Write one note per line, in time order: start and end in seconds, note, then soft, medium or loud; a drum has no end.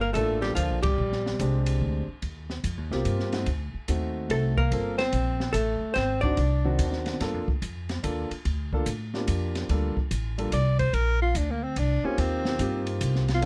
0.00 0.14 G1 medium
0.00 0.12 A#3 medium
0.00 0.14 A#4 medium
0.13 0.55 A1 medium
0.13 0.39 A3 medium
0.13 0.79 A#3 medium
0.13 0.79 D4 medium
0.13 0.79 F4 medium
0.13 0.43 A4 medium
0.13 kick soft
0.13 hi-hat pedal soft
0.13 ride medium
0.17 0.79 A4 medium
0.41 0.55 G3 medium
0.41 0.55 G4 medium
0.41 snare soft
0.55 0.70 D2 medium
0.55 0.81 F3 medium
0.55 0.82 F4 medium
0.55 kick soft
0.55 hi-hat pedal medium
0.55 ride medium
0.70 0.84 A#1 soft
0.82 0.97 G1 medium
0.82 1.62 G3 medium
0.82 1.62 G4 medium
0.82 kick medium
0.82 ride medium
0.98 1.38 A#1 medium
1.12 snare soft
1.26 snare soft
1.39 1.80 C2 medium
1.39 2.03 G#3 medium
1.39 2.03 C4 medium
1.39 2.03 D4 medium
1.39 2.03 G4 medium
1.39 kick soft
1.39 hi-hat pedal medium
1.39 ride medium
1.66 ride medium
1.81 2.06 D2 medium
1.81 kick soft
2.08 muted upright bass stroke soft
2.22 2.63 D#2 medium
2.22 kick soft
2.22 ride soft
2.50 snare soft
2.64 2.77 F2 medium
2.64 kick soft
2.64 hi-hat pedal medium
2.64 ride medium
2.77 2.90 D#2 medium
2.91 3.04 C2 medium
2.91 3.30 A#3 medium
2.91 3.31 C4 medium
2.91 3.31 F4 medium
2.91 3.31 G4 medium
2.91 snare soft
3.05 3.46 G2 medium
3.05 kick soft
3.05 hi-hat pedal medium
3.05 ride medium
3.20 snare soft
3.32 3.46 A3 medium
3.32 3.46 C4 medium
3.32 3.46 D#4 medium
3.32 3.46 F#4 medium
3.32 snare soft
3.32 ride soft
3.46 3.72 D2 medium
3.46 kick soft
3.46 ride soft
3.74 muted upright bass stroke soft
3.88 4.29 D#2 medium
3.88 4.52 A3 medium
3.88 4.52 C4 medium
3.88 4.52 D#4 medium
3.88 4.53 F#4 medium
3.88 kick soft
3.88 hi-hat pedal medium
3.88 ride medium
4.29 4.70 C2 medium
4.29 4.55 A3 medium
4.29 4.57 A4 medium
4.29 kick soft
4.29 ride medium
4.57 4.96 A#3 medium
4.57 4.96 A#4 medium
4.57 kick medium
4.71 5.12 G1 medium
4.71 4.96 A#3 medium
4.71 4.96 C4 soft
4.71 4.97 F4 medium
4.71 4.97 A4 medium
4.71 kick soft
4.71 ride medium
4.98 5.50 C4 medium
4.98 5.51 C5 medium
4.98 snare soft
4.98 ride soft
5.12 5.53 A#1 medium
5.12 kick soft
5.12 hi-hat pedal soft
5.12 ride medium
5.40 snare soft
5.53 5.80 A1 medium
5.53 5.93 A3 medium
5.53 5.92 A4 medium
5.53 kick soft
5.53 hi-hat pedal medium
5.53 ride medium
5.81 muted upright bass stroke soft
5.94 6.36 G#1 medium
5.94 6.21 C4 medium
5.94 6.23 C5 medium
5.94 kick soft
5.94 snare soft
5.94 ride medium
6.21 6.36 C4 medium
6.21 7.02 D4 medium
6.21 6.37 D4 medium
6.21 6.36 D#4 medium
6.21 6.37 F#4 medium
6.21 7.01 D5 medium
6.21 kick medium
6.37 6.78 C2 medium
6.37 kick soft
6.37 ride medium
6.65 7.18 D#3 medium
6.65 7.18 C4 medium
6.65 7.18 D4 medium
6.65 7.18 F#4 medium
6.79 7.19 D#2 medium
6.79 kick soft
6.79 hi-hat pedal medium
6.79 ride medium
6.93 snare soft
7.06 snare soft
7.06 ride soft
7.20 7.34 G2 medium
7.20 7.45 A#3 medium
7.20 7.45 D4 medium
7.20 7.46 F4 medium
7.20 7.46 A4 medium
7.20 kick soft
7.20 snare soft
7.20 ride medium
7.34 7.47 F2 medium
7.48 7.61 D2 medium
7.48 kick soft
7.62 8.02 F2 medium
7.62 kick soft
7.62 hi-hat pedal medium
7.62 ride medium
7.89 snare soft
7.89 ride soft
8.03 8.29 D#2 medium
8.03 8.28 A#3 medium
8.03 8.28 D4 medium
8.03 8.28 F4 medium
8.03 8.29 A4 medium
8.03 kick soft
8.03 hi-hat pedal medium
8.03 ride medium
8.31 muted upright bass stroke soft
8.31 ride soft
8.45 8.86 D2 medium
8.45 kick soft
8.45 ride medium
8.73 8.85 A#3 medium
8.73 8.86 D4 medium
8.73 8.86 F4 medium
8.73 8.86 A4 medium
8.73 kick soft
8.86 9.27 A2 medium
8.86 hi-hat pedal medium
8.86 ride medium
9.14 9.67 A#3 medium
9.14 9.67 D4 medium
9.14 9.67 F4 medium
9.14 9.68 G4 medium
9.14 snare soft
9.28 9.68 F2 medium
9.28 kick soft
9.28 hi-hat pedal medium
9.28 ride medium
9.55 snare soft
9.55 ride soft
9.69 9.95 D2 medium
9.69 9.94 G3 medium
9.69 9.94 A#3 medium
9.69 9.95 D4 medium
9.69 9.95 F4 medium
9.69 9.95 A4 medium
9.69 kick soft
9.69 ride medium
9.96 muted upright bass stroke soft
9.96 kick soft
10.11 10.51 A1 medium
10.11 kick soft
10.11 hi-hat pedal medium
10.11 ride medium
10.38 10.51 G3 medium
10.38 10.51 A#3 medium
10.38 10.51 D4 medium
10.38 10.51 F4 medium
10.38 10.52 A4 medium
10.38 ride soft
10.52 10.93 C2 medium
10.52 10.78 D5 medium
10.52 kick soft
10.52 hi-hat pedal medium
10.52 ride medium
10.79 10.95 C5 medium
10.79 kick soft
10.79 ride soft
10.93 11.34 A#1 medium
10.93 11.21 A#4 medium
10.93 kick soft
10.93 ride medium
11.22 11.38 F4 medium
11.35 11.75 D2 medium
11.35 11.52 D4 medium
11.35 kick soft
11.35 hi-hat pedal medium
11.35 ride medium
11.50 11.65 A#3 medium
11.64 11.80 C4 medium
11.76 12.02 C2 medium
11.76 12.06 D4 medium
11.76 kick soft
11.76 ride medium
12.03 12.57 A#3 medium
12.03 12.57 C4 medium
12.03 12.21 C#4 medium
12.03 12.57 D#4 medium
12.03 12.57 F4 medium
12.03 12.57 G4 medium
12.03 muted upright bass stroke soft
12.18 12.58 D#2 medium
12.18 12.88 C4 medium
12.18 kick soft
12.18 ride medium
12.45 snare medium
12.59 13.00 G2 medium
12.59 13.23 A#3 medium
12.59 13.23 C4 medium
12.59 13.23 D#4 medium
12.59 13.23 F4 medium
12.59 13.24 G4 medium
12.59 kick soft
12.59 hi-hat pedal medium
12.59 ride medium
12.87 ride soft
13.01 13.41 C2 medium
13.01 kick soft
13.01 hi-hat pedal medium
13.01 ride medium
13.15 snare soft
13.28 snare soft
13.28 ride soft
13.34 13.45 F4 medium
13.41 13.45 D2 medium
13.41 13.45 A3 medium
13.41 13.45 C4 medium
13.41 13.45 D4 medium
13.41 ride medium